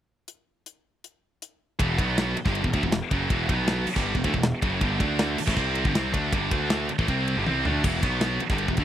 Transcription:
0.28 closed hi-hat medium
0.66 closed hi-hat medium
1.04 closed hi-hat soft
1.42 closed hi-hat medium
1.79 1.97 E1 medium
1.79 1.98 E2 medium
1.79 1.97 B2 loud
1.79 1.98 E3 medium
1.79 kick loud
1.79 ride loud
1.98 2.33 B1 medium
1.98 2.35 B2 medium
1.98 2.36 F#3 medium
1.98 2.36 B3 medium
1.98 kick loud
1.98 ride medium
2.18 snare loud
2.18 ride loud
2.36 muted picked electric bass stroke soft
2.36 muted distorted electric guitar stroke medium
2.36 ride medium
2.45 2.63 G1 medium
2.45 2.63 G2 medium
2.45 2.63 D3 loud
2.45 2.64 G3 loud
2.45 kick loud
2.45 snare soft
2.55 ride medium
2.64 2.73 E1 medium
2.64 2.73 E2 medium
2.64 2.73 B2 medium
2.64 kick medium
2.73 2.82 D2 loud
2.73 2.82 D3 medium
2.73 2.82 A3 medium
2.73 kick medium
2.73 ride medium
2.83 3.01 E1 medium
2.83 2.98 E2 medium
2.83 2.98 B2 medium
2.83 kick medium
2.92 snare loud
2.92 ride loud
3.11 3.29 F#1 medium
3.11 3.29 F#2 medium
3.11 3.30 C#3 loud
3.11 3.30 F#3 loud
3.11 kick loud
3.11 ride medium
3.30 3.48 E1 medium
3.30 3.48 E2 medium
3.30 3.48 B2 loud
3.30 3.50 E3 medium
3.30 kick loud
3.30 ride loud
3.49 3.84 B1 medium
3.49 3.87 B2 medium
3.49 3.87 F#3 loud
3.49 3.87 B3 medium
3.49 kick loud
3.49 ride medium
3.67 snare loud
3.67 ride loud
3.87 muted picked electric bass stroke soft
3.87 muted distorted electric guitar stroke medium
3.87 crash loud
3.96 4.14 G1 loud
3.96 4.15 G2 medium
3.96 4.15 D3 loud
3.96 4.15 G3 loud
3.96 kick loud
3.96 snare soft
4.15 4.24 E1 medium
4.15 4.25 E2 medium
4.15 4.24 B2 medium
4.15 kick medium
4.24 4.33 D2 loud
4.24 4.33 D3 loud
4.24 4.34 A3 loud
4.24 kick medium
4.24 ride medium
4.34 4.52 E1 medium
4.34 4.49 E2 medium
4.34 4.49 B2 medium
4.34 kick medium
4.43 snare loud
4.43 ride loud
4.62 4.80 F#1 loud
4.62 4.80 F#2 medium
4.62 4.80 C#3 loud
4.62 4.81 F#3 loud
4.62 kick loud
4.62 ride medium
4.81 4.99 G1 medium
4.81 4.99 G2 medium
4.81 4.99 D3 loud
4.81 5.00 G3 loud
4.81 kick loud
4.81 ride loud
5.00 5.36 D2 medium
5.00 5.37 D3 medium
5.00 5.38 A3 loud
5.00 5.38 D4 loud
5.00 kick loud
5.00 ride medium
5.19 snare loud
5.19 ride loud
5.38 muted picked electric bass stroke soft
5.38 muted distorted electric guitar stroke medium
5.38 crash loud
5.47 5.56 A1 loud
5.47 5.56 A2 loud
5.47 5.56 E3 loud
5.47 kick loud
5.47 snare soft
5.57 5.83 C2 medium
5.57 5.85 C3 loud
5.57 5.85 G3 loud
5.57 5.85 C4 loud
5.57 kick medium
5.75 ride medium
5.85 5.94 G1 loud
5.85 5.94 G2 medium
5.85 5.94 D3 medium
5.85 kick loud
5.94 6.13 C2 loud
5.94 6.12 C3 medium
5.94 6.13 G3 loud
5.94 6.13 C4 loud
5.94 snare loud
5.94 ride loud
6.13 6.31 D2 loud
6.13 6.32 D3 medium
6.13 6.32 A3 loud
6.13 6.32 D4 loud
6.13 kick loud
6.13 ride medium
6.32 6.50 G1 medium
6.32 6.51 G2 medium
6.32 6.50 D3 loud
6.32 6.51 G3 loud
6.32 kick loud
6.32 ride loud
6.51 6.87 D2 medium
6.51 6.89 D3 medium
6.51 6.89 A3 loud
6.51 6.89 D4 loud
6.51 kick loud
6.51 ride medium
6.70 snare loud
6.70 ride medium
6.89 muted distorted electric guitar stroke medium
6.89 muted picked electric bass stroke soft
6.89 ride medium
6.99 7.07 A1 medium
6.99 7.08 A2 loud
6.99 7.08 E3 loud
6.99 kick loud
7.08 7.35 C2 medium
7.08 7.36 C3 loud
7.08 7.36 G3 loud
7.08 7.37 C4 loud
7.08 kick medium
7.08 ride medium
7.28 ride medium
7.37 7.46 G1 medium
7.37 7.45 G2 medium
7.37 7.46 D3 medium
7.46 7.64 C2 loud
7.46 7.64 C3 loud
7.46 7.65 G3 loud
7.46 7.65 C4 loud
7.46 high tom medium
7.65 7.83 D2 loud
7.65 7.84 D3 medium
7.65 7.84 A3 medium
7.65 7.84 D4 medium
7.65 floor tom medium
7.84 8.02 E1 medium
7.84 8.02 E2 medium
7.84 8.02 B2 loud
7.84 8.03 E3 medium
7.84 kick loud
7.84 crash loud
7.84 ride medium
8.03 8.38 B1 medium
8.03 8.40 B2 medium
8.03 8.40 F#3 medium
8.03 8.40 B3 loud
8.03 kick loud
8.03 ride medium
8.21 snare loud
8.21 ride loud
8.40 muted distorted electric guitar stroke medium
8.40 muted picked electric bass stroke soft
8.40 ride medium
8.50 8.67 G1 loud
8.50 8.68 G2 loud
8.50 8.68 D3 loud
8.50 8.69 G3 loud
8.50 kick loud
8.50 snare soft
8.58 ride medium
8.68 8.77 E1 medium
8.68 8.79 E2 medium
8.68 8.78 B2 medium
8.68 kick medium
8.77 8.84 D2 loud
8.77 8.84 D3 medium
8.77 8.84 A3 loud
8.77 kick medium
8.77 ride medium

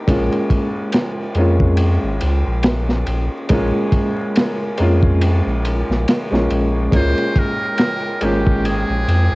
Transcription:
0.07 0.29 A#1 medium
0.07 1.31 G#3 medium
0.07 1.32 A#3 medium
0.07 1.32 C#4 medium
0.07 1.33 F4 medium
0.07 kick loud
0.07 ride medium
0.32 ride soft
0.50 kick medium
0.50 ride medium
0.92 snare loud
0.92 ride medium
1.35 1.98 F2 medium
1.35 3.46 G#3 medium
1.35 3.46 A#3 medium
1.35 3.47 C#4 medium
1.35 ride medium
1.40 3.48 F4 medium
1.60 kick medium
1.77 ride medium
2.03 2.19 G#1 medium
2.21 2.44 C#2 loud
2.21 ride medium
2.47 3.04 A#1 medium
2.63 snare loud
2.63 ride medium
2.89 snare soft
3.07 3.29 A#1 medium
3.07 ride medium
3.49 3.72 A#1 medium
3.49 4.74 G#3 medium
3.49 4.75 A#3 medium
3.49 4.75 C#4 medium
3.49 4.76 F4 medium
3.49 kick loud
3.49 ride medium
3.92 kick medium
3.92 ride medium
4.36 snare loud
4.36 ride medium
4.78 5.42 F2 medium
4.78 6.27 G#3 medium
4.78 6.27 A#3 medium
4.78 6.28 C#4 medium
4.78 ride medium
4.82 6.29 F4 medium
5.03 kick medium
5.21 ride medium
5.46 5.83 A#1 medium
5.65 ride medium
5.89 6.05 A#1 medium
5.89 snare soft
6.08 snare loud
6.08 ride medium
6.31 6.48 A#1 medium
6.31 6.88 G#3 medium
6.31 6.89 A#3 medium
6.31 6.89 C#4 medium
6.31 6.89 F4 medium
6.31 snare soft
6.50 6.89 A#1 medium
6.50 ride medium
6.91 7.14 C#2 medium
6.91 8.16 G#3 medium
6.91 8.17 A#3 medium
6.91 8.18 C#4 medium
6.91 9.35 G5 medium
6.91 kick loud
6.91 ride medium
6.96 8.19 F4 medium
6.96 7.40 C5 loud
7.18 ride soft
7.36 8.26 A#4 loud
7.36 kick medium
7.36 ride medium
7.78 snare loud
7.78 ride medium
8.21 8.84 G#1 medium
8.21 9.35 G#3 medium
8.21 9.35 A#3 medium
8.21 9.35 C#4 medium
8.21 9.35 F4 medium
8.21 8.67 G4 medium
8.21 ride medium
8.47 kick medium
8.65 9.35 G#4 loud
8.65 ride medium
8.89 9.05 A#1 medium
9.08 9.29 F2 loud
9.08 ride medium

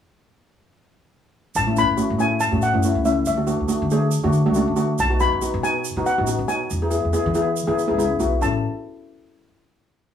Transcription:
1.55 1.82 A1 medium
1.55 1.76 A5 loud
1.55 shaker medium
1.67 1.73 A3 medium
1.67 1.73 C#4 medium
1.67 1.73 E4 medium
1.76 1.90 A3 medium
1.76 1.90 C#4 medium
1.76 1.90 E4 medium
1.76 2.22 B5 medium
1.76 shaker medium
1.88 1.96 A1 medium
1.97 2.11 A3 medium
1.97 2.11 C#4 medium
1.97 2.11 F#4 medium
1.97 shaker medium
2.10 2.45 A2 medium
2.18 2.38 A3 medium
2.18 2.39 C#4 medium
2.18 2.39 E4 medium
2.18 2.40 G#5 medium
2.18 shaker medium
2.40 2.63 A5 medium
2.40 shaker medium
2.51 2.70 A2 medium
2.51 2.64 A3 medium
2.51 2.65 C#4 medium
2.51 2.65 F#4 medium
2.62 3.07 F#5 medium
2.62 shaker medium
2.73 2.91 F#1 medium
2.73 2.80 A3 medium
2.73 2.80 C#4 medium
2.73 2.80 E4 medium
2.83 2.97 A3 medium
2.83 2.98 C#4 medium
2.83 2.98 E4 medium
2.83 shaker medium
2.95 3.21 C#2 medium
3.05 3.25 A3 medium
3.05 3.25 C#4 medium
3.05 3.25 E4 medium
3.05 3.26 E5 medium
3.05 shaker medium
3.25 3.53 D2 medium
3.25 4.09 E5 medium
3.25 shaker medium
3.37 3.44 A3 medium
3.37 3.44 D4 medium
3.37 3.44 F#4 medium
3.47 3.61 A3 medium
3.47 3.61 D4 medium
3.47 3.61 F#4 medium
3.47 shaker medium
3.60 3.68 D2 medium
3.68 3.83 A3 medium
3.68 3.83 D4 medium
3.68 3.83 F#4 medium
3.68 shaker medium
3.82 4.16 D3 medium
3.90 4.11 A3 medium
3.90 4.11 D4 medium
3.90 4.11 G#4 medium
3.90 shaker medium
4.11 shaker medium
4.24 4.42 D3 medium
4.24 4.37 A3 medium
4.24 4.36 D4 medium
4.24 4.36 F#4 medium
4.33 shaker medium
4.46 4.63 C#2 medium
4.46 4.52 A3 medium
4.46 4.52 D4 medium
4.46 4.52 F#4 medium
4.54 4.69 A3 medium
4.54 4.69 D4 medium
4.54 4.69 F#4 medium
4.54 shaker medium
4.68 4.93 D3 medium
4.76 4.96 A3 medium
4.76 4.96 D4 medium
4.76 4.96 F#4 medium
4.76 shaker medium
4.98 5.25 B1 medium
4.98 5.21 A5 loud
4.98 shaker medium
5.10 5.16 B3 medium
5.10 5.16 D#4 medium
5.10 5.16 F#4 medium
5.20 5.34 B3 medium
5.20 5.34 D#4 medium
5.20 5.34 F#4 medium
5.20 5.64 B5 medium
5.20 shaker medium
5.32 5.40 B1 medium
5.42 5.55 B3 medium
5.42 5.55 D#4 medium
5.42 5.55 F#4 medium
5.42 shaker medium
5.54 5.88 B2 medium
5.63 5.82 B3 medium
5.63 5.82 D#4 medium
5.63 5.83 F#4 medium
5.63 6.07 G#5 medium
5.63 shaker medium
5.84 shaker medium
5.96 6.13 B2 medium
5.96 6.09 B3 medium
5.96 6.09 D#4 medium
5.96 6.09 F#4 medium
6.06 6.50 F#5 medium
6.06 shaker medium
6.18 6.35 A1 medium
6.18 6.24 B3 medium
6.18 6.24 D#4 medium
6.18 6.24 F#4 medium
6.27 6.41 B3 medium
6.27 6.41 D#4 medium
6.27 6.41 F#4 medium
6.27 shaker medium
6.39 6.64 B2 medium
6.48 6.68 B3 medium
6.48 6.68 D#4 medium
6.48 6.68 F#4 medium
6.48 7.95 G#5 medium
6.48 shaker medium
6.70 6.97 E2 medium
6.70 shaker medium
6.82 6.88 B3 medium
6.82 6.88 E4 medium
6.82 6.88 G#4 medium
6.91 7.05 B3 medium
6.91 7.05 E4 medium
6.91 7.04 G#4 medium
6.91 shaker medium
7.05 7.12 E2 medium
7.13 7.26 B3 medium
7.13 7.27 E4 medium
7.13 7.26 G#4 medium
7.13 shaker medium
7.26 7.60 E3 medium
7.34 7.54 B3 medium
7.34 7.54 E4 medium
7.34 7.54 G#4 medium
7.34 shaker medium
7.56 shaker medium
7.67 7.85 E3 medium
7.67 7.80 B3 medium
7.67 7.80 E4 medium
7.67 7.80 G#4 medium
7.79 shaker medium
7.87 7.98 C#2 medium
7.87 7.94 B3 medium
7.87 7.94 E4 medium
7.87 7.94 G#4 medium
7.98 8.19 C#2 medium
7.98 8.12 B3 medium
7.98 8.12 E4 medium
7.98 8.12 G#4 medium
7.98 shaker medium
8.20 8.39 B1 medium
8.20 8.39 B3 medium
8.20 8.39 E4 medium
8.20 8.40 F#4 medium
8.20 shaker medium
8.41 8.62 A1 medium
8.41 8.61 C#4 medium
8.41 8.61 E4 medium
8.41 8.62 A4 medium
8.41 8.62 A5 medium
8.41 shaker medium

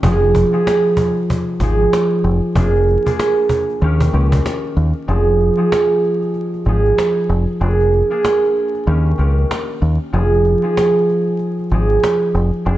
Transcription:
0.00 0.43 F1 loud
0.00 0.51 F3 medium
0.00 2.30 A#3 medium
0.00 1.98 C#4 medium
0.00 0.49 D#4 medium
0.00 0.49 G4 medium
0.00 0.49 G#4 loud
0.00 cajon bass loud
0.24 cajon slap soft
0.35 cajon bass loud
0.52 1.61 F3 medium
0.52 1.62 D#4 medium
0.52 1.62 G4 medium
0.52 1.63 G#4 loud
0.52 cajon slap soft
0.67 cajon slap loud
0.87 cajon slap soft
0.97 cajon bass loud
1.17 cajon slap soft
1.30 cajon bass loud
1.49 cajon slap soft
1.60 1.86 G#1 medium
1.60 2.60 F3 medium
1.60 2.61 D#4 medium
1.60 2.62 G4 medium
1.60 2.56 G#4 loud
1.60 cajon bass loud
1.80 cajon slap soft
1.93 cajon slap loud
2.12 cajon slap soft
2.24 2.39 F1 medium
2.24 cajon slap soft
2.42 cajon slap soft
2.55 2.96 F1 loud
2.55 3.01 A#3 medium
2.55 3.01 D4 medium
2.55 3.02 G#4 loud
2.55 cajon bass loud
2.75 cajon slap soft
2.88 cajon slap soft
3.05 3.82 A#3 loud
3.05 3.88 D4 medium
3.05 3.90 G#4 loud
3.05 cajon bass medium
3.19 cajon slap loud
3.40 cajon slap soft
3.49 cajon bass loud
3.69 cajon slap soft
3.81 4.07 D#2 loud
3.81 4.12 D#3 loud
3.81 4.04 A#3 medium
3.81 4.05 C#4 medium
3.81 4.05 G4 loud
3.81 cajon slap medium
4.00 cajon bass loud
4.13 4.39 C#2 medium
4.13 5.13 D#3 medium
4.13 7.35 A#3 medium
4.13 7.04 C#4 medium
4.13 5.08 G4 loud
4.13 cajon slap soft
4.32 cajon bass loud
4.46 cajon slap loud
4.65 cajon slap soft
4.77 4.92 D#2 loud
4.77 cajon slap soft
4.95 cajon slap soft
5.08 5.49 F1 loud
5.08 5.56 F3 medium
5.08 5.54 D#4 medium
5.08 5.54 G4 medium
5.08 5.54 G#4 loud
5.08 cajon slap soft
5.29 cajon slap soft
5.40 cajon slap soft
5.57 6.66 F3 medium
5.57 6.67 D#4 medium
5.57 6.67 G4 medium
5.57 6.69 G#4 loud
5.57 cajon slap soft
5.72 cajon slap loud
5.92 cajon slap soft
6.04 cajon slap soft
6.22 cajon slap soft
6.34 cajon slap medium
6.54 cajon slap soft
6.65 6.91 G#1 medium
6.65 7.66 F3 medium
6.65 7.67 D#4 medium
6.65 7.67 G4 medium
6.65 7.61 G#4 medium
6.65 cajon slap soft
6.86 cajon slap soft
6.98 cajon slap loud
7.17 cajon slap soft
7.29 7.44 F1 medium
7.29 cajon slap soft
7.48 cajon slap soft
7.60 8.01 F1 loud
7.60 8.06 A#3 medium
7.60 8.07 D4 medium
7.60 8.07 G#4 medium
7.60 cajon slap soft
7.81 cajon slap soft
7.93 cajon slap soft
8.10 8.88 A#3 medium
8.10 8.93 D4 medium
8.10 8.95 G#4 loud
8.10 cajon slap soft
8.25 cajon slap loud
8.45 cajon slap soft
8.57 cajon slap soft
8.75 cajon slap soft
8.87 9.12 D#2 loud
8.87 9.17 D#3 loud
8.87 9.10 A#3 medium
8.87 9.10 C#4 medium
8.87 9.10 G4 medium
8.87 cajon slap soft
9.06 cajon slap soft
9.18 9.44 C#2 medium
9.18 10.18 D#3 medium
9.18 12.40 A#3 medium
9.18 12.08 C#4 medium
9.18 10.13 G4 medium
9.18 cajon slap soft
9.38 cajon slap soft
9.51 cajon slap loud
9.70 cajon slap soft
9.82 9.97 D#2 medium
9.82 cajon slap soft
10.00 cajon slap soft
10.13 10.54 F1 loud
10.13 10.62 F3 medium
10.13 10.59 D#4 medium
10.13 10.59 G4 medium
10.13 10.60 G#4 loud
10.13 cajon slap soft
10.34 cajon slap soft
10.46 cajon slap soft
10.62 11.71 F3 medium
10.62 11.73 D#4 medium
10.62 11.73 G4 medium
10.62 11.73 G#4 loud
10.62 cajon slap soft
10.77 cajon slap loud
10.97 cajon slap soft
11.09 cajon slap soft
11.27 cajon slap soft
11.39 cajon slap soft
11.59 cajon slap soft
11.70 11.97 G#1 medium
11.70 12.71 F3 medium
11.70 12.72 D#4 medium
11.70 12.72 G4 medium
11.70 12.66 G#4 medium
11.70 cajon slap soft
11.91 cajon slap soft
12.04 cajon slap loud
12.23 cajon slap soft
12.35 12.50 F1 medium
12.35 cajon slap soft
12.53 cajon slap soft
12.65 12.78 F1 loud
12.65 12.78 A#3 medium
12.65 12.78 D4 medium
12.65 12.78 G#4 loud
12.65 cajon slap soft

